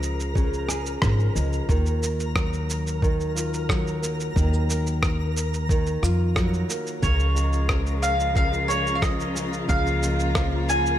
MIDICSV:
0, 0, Header, 1, 7, 480
1, 0, Start_track
1, 0, Key_signature, -6, "minor"
1, 0, Tempo, 666667
1, 1216, Time_signature, 4, 2, 24, 8
1, 7911, End_track
2, 0, Start_track
2, 0, Title_t, "Mandolin"
2, 0, Program_c, 0, 25
2, 5060, Note_on_c, 0, 73, 87
2, 5778, Note_on_c, 0, 77, 87
2, 5799, Note_off_c, 0, 73, 0
2, 6014, Note_off_c, 0, 77, 0
2, 6022, Note_on_c, 0, 77, 94
2, 6251, Note_on_c, 0, 73, 90
2, 6266, Note_off_c, 0, 77, 0
2, 6446, Note_on_c, 0, 77, 60
2, 6449, Note_off_c, 0, 73, 0
2, 6496, Note_off_c, 0, 77, 0
2, 6499, Note_on_c, 0, 75, 81
2, 6978, Note_on_c, 0, 77, 107
2, 6992, Note_off_c, 0, 75, 0
2, 7696, Note_off_c, 0, 77, 0
2, 7699, Note_on_c, 0, 80, 91
2, 7911, Note_off_c, 0, 80, 0
2, 7911, End_track
3, 0, Start_track
3, 0, Title_t, "Synth texture"
3, 0, Program_c, 1, 99
3, 0, Note_on_c, 1, 70, 79
3, 0, Note_on_c, 1, 82, 73
3, 7911, Note_off_c, 1, 70, 0
3, 7911, Note_off_c, 1, 82, 0
3, 7911, End_track
4, 0, Start_track
4, 0, Title_t, "String quartet"
4, 0, Program_c, 2, 48
4, 5056, Note_on_c, 2, 49, 75
4, 5057, Note_on_c, 2, 65, 91
4, 5058, Note_on_c, 2, 53, 70
4, 5058, Note_on_c, 2, 56, 68
4, 6958, Note_off_c, 2, 56, 0
4, 6973, Note_on_c, 2, 58, 70
4, 7911, Note_off_c, 2, 49, 0
4, 7911, Note_off_c, 2, 53, 0
4, 7911, Note_off_c, 2, 58, 0
4, 7911, Note_off_c, 2, 65, 0
4, 7911, End_track
5, 0, Start_track
5, 0, Title_t, "Nylon-string guitar"
5, 0, Program_c, 3, 24
5, 0, Note_on_c, 3, 49, 72
5, 0, Note_on_c, 3, 53, 62
5, 0, Note_on_c, 3, 56, 52
5, 0, Note_on_c, 3, 68, 50
5, 244, Note_off_c, 3, 49, 0
5, 253, Note_on_c, 3, 49, 83
5, 483, Note_off_c, 3, 68, 0
5, 492, Note_on_c, 3, 68, 69
5, 730, Note_off_c, 3, 53, 0
5, 733, Note_on_c, 3, 53, 66
5, 965, Note_off_c, 3, 56, 0
5, 974, Note_on_c, 3, 56, 56
5, 1214, Note_off_c, 3, 49, 0
5, 1217, Note_on_c, 3, 51, 77
5, 1262, Note_off_c, 3, 68, 0
5, 1263, Note_off_c, 3, 56, 0
5, 1451, Note_on_c, 3, 58, 53
5, 1692, Note_off_c, 3, 53, 0
5, 1695, Note_on_c, 3, 54, 67
5, 2169, Note_off_c, 3, 51, 0
5, 2177, Note_on_c, 3, 51, 79
5, 2415, Note_on_c, 3, 65, 63
5, 2647, Note_off_c, 3, 54, 0
5, 2656, Note_on_c, 3, 54, 68
5, 2889, Note_off_c, 3, 58, 0
5, 2898, Note_on_c, 3, 58, 60
5, 3129, Note_off_c, 3, 51, 0
5, 3138, Note_on_c, 3, 51, 81
5, 3365, Note_off_c, 3, 58, 0
5, 3373, Note_on_c, 3, 58, 54
5, 3616, Note_off_c, 3, 54, 0
5, 4089, Note_off_c, 3, 51, 0
5, 4098, Note_on_c, 3, 51, 80
5, 4335, Note_off_c, 3, 65, 0
5, 4338, Note_on_c, 3, 65, 68
5, 4575, Note_on_c, 3, 54, 64
5, 4804, Note_off_c, 3, 58, 0
5, 4812, Note_on_c, 3, 58, 60
5, 5052, Note_off_c, 3, 51, 0
5, 5054, Note_on_c, 3, 49, 70
5, 5102, Note_off_c, 3, 58, 0
5, 5104, Note_off_c, 3, 54, 0
5, 5294, Note_on_c, 3, 56, 52
5, 5533, Note_on_c, 3, 53, 67
5, 6004, Note_off_c, 3, 49, 0
5, 6012, Note_on_c, 3, 49, 84
5, 6249, Note_off_c, 3, 65, 0
5, 6251, Note_on_c, 3, 68, 63
5, 6488, Note_off_c, 3, 53, 0
5, 6490, Note_on_c, 3, 53, 69
5, 6721, Note_off_c, 3, 56, 0
5, 6730, Note_on_c, 3, 56, 57
5, 6963, Note_off_c, 3, 49, 0
5, 6972, Note_on_c, 3, 49, 76
5, 7206, Note_off_c, 3, 56, 0
5, 7215, Note_on_c, 3, 56, 54
5, 7450, Note_off_c, 3, 53, 0
5, 7453, Note_on_c, 3, 53, 69
5, 7911, Note_off_c, 3, 49, 0
5, 7911, Note_off_c, 3, 53, 0
5, 7911, Note_off_c, 3, 56, 0
5, 7911, Note_off_c, 3, 68, 0
5, 7911, End_track
6, 0, Start_track
6, 0, Title_t, "Upright bass"
6, 0, Program_c, 4, 32
6, 0, Note_on_c, 4, 37, 88
6, 681, Note_off_c, 4, 37, 0
6, 736, Note_on_c, 4, 32, 88
6, 906, Note_off_c, 4, 32, 0
6, 976, Note_on_c, 4, 37, 80
6, 1146, Note_off_c, 4, 37, 0
6, 1217, Note_on_c, 4, 39, 94
6, 3080, Note_off_c, 4, 39, 0
6, 3140, Note_on_c, 4, 39, 99
6, 4335, Note_off_c, 4, 39, 0
6, 4340, Note_on_c, 4, 41, 75
6, 4762, Note_off_c, 4, 41, 0
6, 5060, Note_on_c, 4, 37, 91
6, 6922, Note_off_c, 4, 37, 0
6, 6977, Note_on_c, 4, 37, 101
6, 7911, Note_off_c, 4, 37, 0
6, 7911, End_track
7, 0, Start_track
7, 0, Title_t, "Drums"
7, 22, Note_on_c, 9, 82, 70
7, 94, Note_off_c, 9, 82, 0
7, 145, Note_on_c, 9, 82, 30
7, 217, Note_off_c, 9, 82, 0
7, 256, Note_on_c, 9, 36, 99
7, 265, Note_on_c, 9, 82, 42
7, 328, Note_off_c, 9, 36, 0
7, 337, Note_off_c, 9, 82, 0
7, 385, Note_on_c, 9, 82, 20
7, 457, Note_off_c, 9, 82, 0
7, 494, Note_on_c, 9, 37, 32
7, 501, Note_on_c, 9, 82, 76
7, 566, Note_off_c, 9, 37, 0
7, 573, Note_off_c, 9, 82, 0
7, 620, Note_on_c, 9, 82, 35
7, 692, Note_off_c, 9, 82, 0
7, 733, Note_on_c, 9, 37, 93
7, 736, Note_on_c, 9, 36, 91
7, 739, Note_on_c, 9, 82, 41
7, 805, Note_off_c, 9, 37, 0
7, 808, Note_off_c, 9, 36, 0
7, 811, Note_off_c, 9, 82, 0
7, 862, Note_on_c, 9, 82, 21
7, 934, Note_off_c, 9, 82, 0
7, 981, Note_on_c, 9, 82, 72
7, 1053, Note_off_c, 9, 82, 0
7, 1100, Note_on_c, 9, 82, 28
7, 1172, Note_off_c, 9, 82, 0
7, 1215, Note_on_c, 9, 36, 94
7, 1222, Note_on_c, 9, 82, 42
7, 1287, Note_off_c, 9, 36, 0
7, 1294, Note_off_c, 9, 82, 0
7, 1340, Note_on_c, 9, 82, 22
7, 1412, Note_off_c, 9, 82, 0
7, 1462, Note_on_c, 9, 82, 72
7, 1534, Note_off_c, 9, 82, 0
7, 1585, Note_on_c, 9, 82, 31
7, 1657, Note_off_c, 9, 82, 0
7, 1696, Note_on_c, 9, 36, 101
7, 1696, Note_on_c, 9, 37, 88
7, 1703, Note_on_c, 9, 82, 41
7, 1768, Note_off_c, 9, 36, 0
7, 1768, Note_off_c, 9, 37, 0
7, 1775, Note_off_c, 9, 82, 0
7, 1824, Note_on_c, 9, 82, 18
7, 1896, Note_off_c, 9, 82, 0
7, 1944, Note_on_c, 9, 82, 73
7, 2016, Note_off_c, 9, 82, 0
7, 2068, Note_on_c, 9, 82, 31
7, 2140, Note_off_c, 9, 82, 0
7, 2177, Note_on_c, 9, 36, 98
7, 2187, Note_on_c, 9, 82, 41
7, 2249, Note_off_c, 9, 36, 0
7, 2259, Note_off_c, 9, 82, 0
7, 2307, Note_on_c, 9, 82, 20
7, 2379, Note_off_c, 9, 82, 0
7, 2427, Note_on_c, 9, 82, 78
7, 2499, Note_off_c, 9, 82, 0
7, 2548, Note_on_c, 9, 82, 33
7, 2620, Note_off_c, 9, 82, 0
7, 2658, Note_on_c, 9, 36, 99
7, 2661, Note_on_c, 9, 37, 99
7, 2668, Note_on_c, 9, 82, 41
7, 2730, Note_off_c, 9, 36, 0
7, 2733, Note_off_c, 9, 37, 0
7, 2740, Note_off_c, 9, 82, 0
7, 2788, Note_on_c, 9, 82, 21
7, 2860, Note_off_c, 9, 82, 0
7, 2905, Note_on_c, 9, 82, 77
7, 2977, Note_off_c, 9, 82, 0
7, 3027, Note_on_c, 9, 82, 31
7, 3099, Note_off_c, 9, 82, 0
7, 3139, Note_on_c, 9, 36, 88
7, 3147, Note_on_c, 9, 82, 43
7, 3211, Note_off_c, 9, 36, 0
7, 3219, Note_off_c, 9, 82, 0
7, 3266, Note_on_c, 9, 82, 20
7, 3338, Note_off_c, 9, 82, 0
7, 3385, Note_on_c, 9, 82, 69
7, 3457, Note_off_c, 9, 82, 0
7, 3505, Note_on_c, 9, 82, 33
7, 3577, Note_off_c, 9, 82, 0
7, 3619, Note_on_c, 9, 36, 90
7, 3619, Note_on_c, 9, 37, 88
7, 3625, Note_on_c, 9, 82, 43
7, 3691, Note_off_c, 9, 36, 0
7, 3691, Note_off_c, 9, 37, 0
7, 3697, Note_off_c, 9, 82, 0
7, 3867, Note_on_c, 9, 82, 75
7, 3939, Note_off_c, 9, 82, 0
7, 3989, Note_on_c, 9, 82, 30
7, 4061, Note_off_c, 9, 82, 0
7, 4099, Note_on_c, 9, 36, 99
7, 4107, Note_on_c, 9, 82, 45
7, 4171, Note_off_c, 9, 36, 0
7, 4179, Note_off_c, 9, 82, 0
7, 4223, Note_on_c, 9, 82, 20
7, 4295, Note_off_c, 9, 82, 0
7, 4341, Note_on_c, 9, 37, 27
7, 4348, Note_on_c, 9, 82, 79
7, 4413, Note_off_c, 9, 37, 0
7, 4420, Note_off_c, 9, 82, 0
7, 4579, Note_on_c, 9, 36, 95
7, 4579, Note_on_c, 9, 37, 93
7, 4586, Note_on_c, 9, 82, 41
7, 4651, Note_off_c, 9, 36, 0
7, 4651, Note_off_c, 9, 37, 0
7, 4658, Note_off_c, 9, 82, 0
7, 4707, Note_on_c, 9, 82, 22
7, 4779, Note_off_c, 9, 82, 0
7, 4824, Note_on_c, 9, 82, 80
7, 4896, Note_off_c, 9, 82, 0
7, 4945, Note_on_c, 9, 82, 31
7, 5017, Note_off_c, 9, 82, 0
7, 5059, Note_on_c, 9, 36, 99
7, 5062, Note_on_c, 9, 82, 43
7, 5131, Note_off_c, 9, 36, 0
7, 5134, Note_off_c, 9, 82, 0
7, 5181, Note_on_c, 9, 82, 21
7, 5253, Note_off_c, 9, 82, 0
7, 5303, Note_on_c, 9, 82, 68
7, 5375, Note_off_c, 9, 82, 0
7, 5421, Note_on_c, 9, 82, 30
7, 5493, Note_off_c, 9, 82, 0
7, 5537, Note_on_c, 9, 37, 88
7, 5538, Note_on_c, 9, 36, 97
7, 5544, Note_on_c, 9, 82, 42
7, 5609, Note_off_c, 9, 37, 0
7, 5610, Note_off_c, 9, 36, 0
7, 5616, Note_off_c, 9, 82, 0
7, 5663, Note_on_c, 9, 82, 18
7, 5735, Note_off_c, 9, 82, 0
7, 5782, Note_on_c, 9, 82, 70
7, 5854, Note_off_c, 9, 82, 0
7, 5903, Note_on_c, 9, 82, 31
7, 5975, Note_off_c, 9, 82, 0
7, 6017, Note_on_c, 9, 36, 100
7, 6022, Note_on_c, 9, 82, 38
7, 6089, Note_off_c, 9, 36, 0
7, 6094, Note_off_c, 9, 82, 0
7, 6146, Note_on_c, 9, 82, 21
7, 6218, Note_off_c, 9, 82, 0
7, 6265, Note_on_c, 9, 82, 80
7, 6337, Note_off_c, 9, 82, 0
7, 6386, Note_on_c, 9, 82, 33
7, 6458, Note_off_c, 9, 82, 0
7, 6496, Note_on_c, 9, 36, 102
7, 6498, Note_on_c, 9, 37, 90
7, 6504, Note_on_c, 9, 82, 42
7, 6568, Note_off_c, 9, 36, 0
7, 6570, Note_off_c, 9, 37, 0
7, 6576, Note_off_c, 9, 82, 0
7, 6626, Note_on_c, 9, 82, 22
7, 6698, Note_off_c, 9, 82, 0
7, 6742, Note_on_c, 9, 82, 75
7, 6814, Note_off_c, 9, 82, 0
7, 6862, Note_on_c, 9, 82, 29
7, 6934, Note_off_c, 9, 82, 0
7, 6975, Note_on_c, 9, 36, 85
7, 6981, Note_on_c, 9, 82, 39
7, 7047, Note_off_c, 9, 36, 0
7, 7053, Note_off_c, 9, 82, 0
7, 7105, Note_on_c, 9, 82, 21
7, 7177, Note_off_c, 9, 82, 0
7, 7222, Note_on_c, 9, 82, 68
7, 7294, Note_off_c, 9, 82, 0
7, 7342, Note_on_c, 9, 82, 29
7, 7414, Note_off_c, 9, 82, 0
7, 7453, Note_on_c, 9, 37, 82
7, 7456, Note_on_c, 9, 36, 90
7, 7460, Note_on_c, 9, 82, 40
7, 7525, Note_off_c, 9, 37, 0
7, 7528, Note_off_c, 9, 36, 0
7, 7532, Note_off_c, 9, 82, 0
7, 7699, Note_on_c, 9, 82, 67
7, 7771, Note_off_c, 9, 82, 0
7, 7821, Note_on_c, 9, 82, 29
7, 7893, Note_off_c, 9, 82, 0
7, 7911, End_track
0, 0, End_of_file